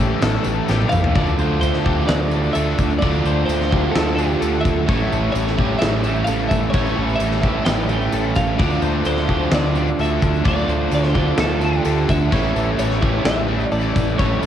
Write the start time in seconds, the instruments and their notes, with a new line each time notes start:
Already playing: distorted electric guitar A2, overdriven electric guitar A2 E3 G3 C#4 E4, clean electric guitar G4 C#5
0.00 fingered electric bass A1, distorted electric guitar A2 E3 A3
0.21 fingered electric bass A1, clean electric guitar A4, snare, tambourine, crash
0.44 fingered electric bass A1, tambourine
0.68 fingered electric bass A1, distorted electric guitar A2 E3 A3, clean electric guitar G4, snare, tambourine
0.82 high tom
0.89 fingered electric bass A1, distorted electric guitar A3, clean electric guitar F5, mid tom, tambourine
0.95 distorted electric guitar E3
1.04 floor tom
1.14 fingered electric bass D2, distorted electric guitar D3 A3 D4, overdriven electric guitar D3 A3 D4, clean electric guitar D5, kick, tambourine, crash
1.18 overdriven electric guitar F4
1.26 tambourine
1.38 fingered electric bass D2, distorted electric guitar A3 D4, clean electric guitar C5, tambourine
1.61 fingered electric bass D2, distorted electric guitar D3 A3 D4, clean electric guitar C5, tambourine, crash
1.74 snare, tambourine
1.84 overdriven electric guitar D3 A3 D4 F4, distorted electric guitar D4, clean electric guitar G4, kick
1.89 distorted electric guitar A3
2.08 fingered electric bass D2, clean electric guitar D5, snare, tambourine, crash
2.31 distorted electric guitar A3 D4, tambourine
2.36 distorted electric guitar D3
2.43 tambourine
2.53 fingered electric bass D2, clean electric guitar A4 E5, tambourine, crash
2.57 distorted electric guitar D3 A3 D4
2.78 fingered electric bass D2, kick, tambourine
2.91 tambourine
2.99 overdriven electric guitar D3 A3, clean electric guitar D5, kick, tambourine, crash
3.03 fingered electric bass D2, distorted electric guitar D3 A3 D4, overdriven electric guitar D4 F4, clean electric guitar D5
3.14 tambourine
3.25 fingered electric bass D2, distorted electric guitar A3 D4, clean electric guitar C5, tambourine
3.46 fingered electric bass D2, clean electric guitar C5, tambourine
3.50 distorted electric guitar D3 A3 D4, crash
3.61 snare, tambourine
3.70 overdriven electric guitar D3 A3 D4 F4, distorted electric guitar D4, clean electric guitar G4, kick
3.75 distorted electric guitar A3
3.92 fingered electric bass D2, clean electric guitar A4, snare, tambourine, crash
4.15 distorted electric guitar D4, clean electric guitar G4, tambourine
4.20 distorted electric guitar D3 A3
4.31 tambourine
4.41 fingered electric bass D2, distorted electric guitar D3 A3, clean electric guitar A4, tambourine, crash
4.45 distorted electric guitar D4
4.54 tambourine
4.61 clean electric guitar E5
4.65 fingered electric bass D2, kick, tambourine
4.86 fingered electric bass A1, overdriven electric guitar A2 E3 G3 C#4 E4, distorted electric guitar A2, clean electric guitar C#5, kick, tambourine, crash
4.91 distorted electric guitar E3 A3
5.00 tambourine
5.12 fingered electric bass A1, distorted electric guitar A3, clean electric guitar A4, tambourine
5.16 distorted electric guitar E3
5.32 fingered electric bass A1, distorted electric guitar A2, clean electric guitar C#5, tambourine, crash
5.37 distorted electric guitar E3 A3
5.47 snare, tambourine
5.57 overdriven electric guitar A2 E3 G3 C#4 E4, distorted electric guitar E3 A3, clean electric guitar G4, kick
5.79 fingered electric bass A1, clean electric guitar E5, snare, tambourine, crash
6.04 distorted electric guitar A2 E3 A3, tambourine
6.16 tambourine
6.24 fingered electric bass A1, distorted electric guitar A2 E3 A3, clean electric guitar A4 F5, tambourine, crash
6.39 tambourine
6.49 fingered electric bass A1, clean electric guitar E5, kick, tambourine
6.63 tambourine
6.70 fingered electric bass A1, overdriven electric guitar A2, clean electric guitar C#5, crash
6.74 distorted electric guitar A2 E3 A3, overdriven electric guitar E3 G3 C#4 E4, clean electric guitar C#5, kick, tambourine
6.86 tambourine
6.96 fingered electric bass A1, distorted electric guitar E3 A3, clean electric guitar A4
7.09 tambourine
7.16 fingered electric bass A1, clean electric guitar E5
7.20 distorted electric guitar A2 E3 A3, tambourine, crash
7.32 snare, tambourine
7.42 overdriven electric guitar A2 E3 G3 C#4 E4, distorted electric guitar A3, clean electric guitar G4, kick, tambourine
7.46 distorted electric guitar E3
7.65 fingered electric bass A1, clean electric guitar G5, snare, tambourine, crash
7.78 tambourine
7.89 distorted electric guitar A2 E3 A3, tambourine
8.01 tambourine
8.12 fingered electric bass A1, distorted electric guitar A2 E3 A3, clean electric guitar A4, tambourine, crash
8.24 tambourine
8.35 fingered electric bass A1, clean electric guitar F5, kick, tambourine
8.47 tambourine
8.58 fingered electric bass D2, overdriven electric guitar D3 A3 D4 F4, distorted electric guitar D3 A3 D4, clean electric guitar D5, kick, tambourine, crash
8.71 tambourine
8.82 fingered electric bass D2, distorted electric guitar A3 D4, clean electric guitar C5, tambourine
9.05 fingered electric bass D2, distorted electric guitar D3 A3 D4, clean electric guitar C5, tambourine, crash
9.17 snare
9.27 overdriven electric guitar D3 A3 D4 F4, distorted electric guitar D4, clean electric guitar G4, kick
9.32 distorted electric guitar A3
9.52 fingered electric bass D2, clean electric guitar D5, snare, tambourine, crash
9.75 distorted electric guitar D3 A3 D4, tambourine
9.88 tambourine
9.98 fingered electric bass D2, distorted electric guitar D3 A3 D4, clean electric guitar A4 E5, tambourine, crash
10.22 fingered electric bass D2, kick, tambourine
10.34 tambourine
10.44 fingered electric bass D2, overdriven electric guitar D3 A3 D4 F4, distorted electric guitar D3 A3 D4, clean electric guitar D5, kick, tambourine, crash
10.58 tambourine
10.68 fingered electric bass D2, distorted electric guitar A3 D4, clean electric guitar C5, tambourine
10.91 fingered electric bass D2, distorted electric guitar D3 A3 D4, clean electric guitar C5, tambourine, crash
11.04 snare, tambourine
11.14 overdriven electric guitar D3 A3 D4 F4, distorted electric guitar A3 D4, clean electric guitar G4, kick
11.38 fingered electric bass D2, clean electric guitar A4, snare, tambourine, crash
11.61 distorted electric guitar D3 A3 D4, clean electric guitar G4, tambourine
11.73 tambourine
11.83 fingered electric bass D2, distorted electric guitar D3 A3 D4, clean electric guitar A4, tambourine, crash
12.09 fingered electric bass D2, clean electric guitar E5, kick, tambourine
12.21 tambourine
12.30 fingered electric bass A1, distorted electric guitar A2 E3 A3, overdriven electric guitar A2 E3 G3 C#4 E4, clean electric guitar C#5, kick, tambourine, crash
12.43 tambourine
12.54 fingered electric bass A1, distorted electric guitar E3 A3, clean electric guitar A4, tambourine
12.78 fingered electric bass A1, distorted electric guitar A2 E3 A3, clean electric guitar C#5, tambourine, crash
12.89 snare, tambourine
13.01 distorted electric guitar E3 A3, overdriven electric guitar E3 G3 C#4 E4, clean electric guitar G4, kick
13.05 overdriven electric guitar A2
13.24 fingered electric bass A1, clean electric guitar E5, snare, tambourine, crash
13.47 distorted electric guitar A2 E3 A3
13.61 tambourine
13.71 fingered electric bass A1, distorted electric guitar A2 E3 A3, clean electric guitar A4 D5, tambourine, crash
13.84 tambourine
13.96 fingered electric bass A1, kick, tambourine
14.08 tambourine
14.18 fingered electric bass A1, distorted electric guitar A2 E3 A3, overdriven electric guitar A2 E3 G3 C#4 E4, clean electric guitar C#5, kick, tambourine, crash
14.41 distorted electric guitar A3, clean electric guitar A4, tambourine